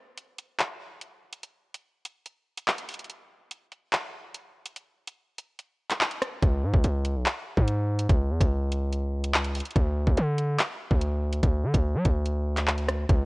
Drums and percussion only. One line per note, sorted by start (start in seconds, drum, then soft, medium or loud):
0.18 closed hi-hat medium
0.38 closed hi-hat medium
0.59 clap loud
0.59 closed hi-hat medium
1.01 closed hi-hat medium
1.32 closed hi-hat medium
1.43 closed hi-hat medium
1.74 closed hi-hat medium
2.05 closed hi-hat medium
2.26 closed hi-hat medium
2.57 closed hi-hat medium
2.68 clap loud
2.78 closed hi-hat medium
2.89 closed hi-hat medium
2.89 open hi-hat medium
2.94 closed hi-hat medium
2.99 closed hi-hat medium
3.04 closed hi-hat soft
3.09 closed hi-hat medium
3.51 closed hi-hat medium
3.72 closed hi-hat medium
3.92 clap loud
3.92 closed hi-hat medium
4.34 closed hi-hat medium
4.66 closed hi-hat medium
4.76 closed hi-hat medium
5.07 closed hi-hat medium
5.38 closed hi-hat medium
5.59 closed hi-hat medium
5.91 clap medium
5.91 closed hi-hat medium
6.01 clap loud
6.11 closed hi-hat medium
6.22 cross-stick medium
6.22 closed hi-hat medium
6.43 kick loud
6.43 closed hi-hat medium
6.74 kick loud
6.84 closed hi-hat medium
7.05 closed hi-hat medium
7.26 clap loud
7.26 closed hi-hat medium
7.57 kick medium
7.68 closed hi-hat medium
7.99 closed hi-hat medium
8.09 kick loud
8.09 closed hi-hat medium
8.41 kick loud
8.41 closed hi-hat medium
8.72 closed hi-hat medium
8.92 closed hi-hat medium
9.24 closed hi-hat medium
9.34 clap loud
9.45 closed hi-hat medium
9.55 closed hi-hat medium
9.55 open hi-hat medium
9.60 closed hi-hat medium
9.66 closed hi-hat medium
9.71 closed hi-hat soft
9.76 kick loud
9.76 closed hi-hat medium
10.07 kick loud
10.17 closed hi-hat medium
10.38 closed hi-hat medium
10.59 clap loud
10.59 closed hi-hat medium
10.91 kick medium
11.01 closed hi-hat medium
11.32 closed hi-hat medium
11.43 kick loud
11.43 closed hi-hat medium
11.74 kick loud
11.74 closed hi-hat medium
12.05 kick loud
12.05 closed hi-hat medium
12.26 closed hi-hat medium
12.57 clap medium
12.57 closed hi-hat medium
12.68 clap loud
12.78 closed hi-hat medium
12.89 cross-stick medium
12.89 closed hi-hat medium
13.09 kick loud
13.09 closed hi-hat medium